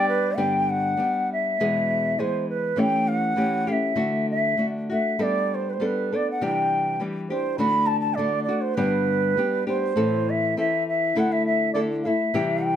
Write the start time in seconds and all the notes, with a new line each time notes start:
Already playing: G3 B3 D4 G4 D5
0.08 B4
0.36 G2 D3 G3 B3 D4 G4 G5
0.69 F#5
0.97 G3 B3 D4 G4
1.32 E5
1.60 E2 B2 E3 G#3 B3 G#4
2.18 E3 G#3 B3 G#4 C5
2.49 B4
2.76 E3 A3 C#4 G4 G5
3.08 F#5
3.36 E3 A3 C#4 G4
3.67 A3 C#4 G4 F5
3.72 E5
3.95 D3 A3 D4 F#4
4.30 E5
4.57 D3 A3 D4 F#4
4.90 A3 D4 F#4 E5
5.19 G3 B3 D4 A4 D5
5.54 C5
5.69 B4 C5
5.80 G3 B3 D4 A4
5.84 B4
6.12 B3 D4 A4 D5
6.31 F#5
6.41 C3 E3 G3 D4 G4 G5
7.00 E3 G3 D4 G4
7.29 G3 D4 G4 C5
7.58 D3 A3 D4 F#4 B5
7.86 A5
8.00 A5
8.14 D3 A3 D5
8.19 D4 F#4
8.43 D5
8.48 A3 D4 F#4
8.61 C5
8.74 G2 D3 G3 B3 D4 G4 B4
9.37 G3 B3 D4 G4
9.67 G3 B3 D4 G4 C5
9.96 A2 E3 C4 E4 A4
10.30 E5
10.57 E3 C4 E4 A4 E5
10.88 E5
11.15 D3 A3 E4 A4 F#5
11.32 E5
11.46 E5
11.73 D3 A3 E4 A4 D5
12.03 A3 E4 A4 E5 F5
12.34 C3 E3 G3 E4 G4
12.64 G5